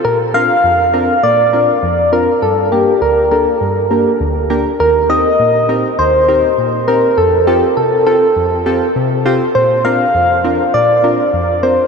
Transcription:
<<
  \new Staff \with { instrumentName = "Soft synth lead" } { \time 4/4 \key bes \major \tempo 4 = 101 bes'8 f''4. d''4. bes'8 | a'8 g'8 bes'8 bes'4. r4 | bes'8 ees''4. c''4. bes'8 | a'8 g'8 a'8 a'4. r4 |
c''8 f''4. d''4. c''8 | }
  \new Staff \with { instrumentName = "Synth keys" } { \time 4/4 \key bes \major << { r8 <c' d' f' bes'>8 r8 <c' d' f' bes'>8 r8 <c' d' f' bes'>8 r8 <c' d' f' bes'>8 | r8 <bes d' g' bes'>8 r8 <bes d' g' a'>8 r8 <bes d' g' bes'>8 r8 <bes d' g' bes'>8 | r8 <c' ees' g' bes'>8 r8 <c' ees' g' bes'>8 r8 <c' ees' g' bes'>8 r8 <c' ees' g' bes'>8 | r8 <c' f' g' a'>8 r8 <c' f' g' a'>8 r8 <c' f' g' a'>8 r8 <c' f' g' c''>8 |
r8 <c' d' f' bes'>8 r8 <c' d' f' bes'>8 r8 <c' d' f' bes'>8 r8 <c' d' f' bes'>8 | } \\ { bes,4 f,4 bes,4 f,4 | g,4 d,4 g,4 d,4 | ees,4 bes,4 ees,4 bes,4 | f,4 c4 f,4 c4 |
bes,4 f,4 bes,4 f,4 | } >> }
>>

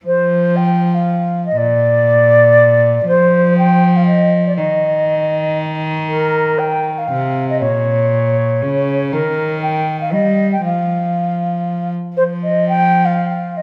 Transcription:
<<
  \new Staff \with { instrumentName = "Flute" } { \time 3/4 \key ees \lydian \tempo 4 = 119 c''4 g''8. f''4 ees''16 | d''2. | c''4 g''8. f''16 ees''8. d''16 | ees''2 r4 |
bes'4 g''8. f''4 ees''16 | des''2. | bes'4 g''8. f''16 ees''8. g''16 | f''2~ f''8 r8 |
c''8 ees''8 g''8. f''4 ees''16 | }
  \new Staff \with { instrumentName = "Cello" } { \clef bass \time 3/4 \key ees \lydian f2. | bes,2. | f2. | ees2.~ |
ees2 c4 | bes,2 des4 | ees2 g4 | f2~ f8 r8 |
f2. | }
>>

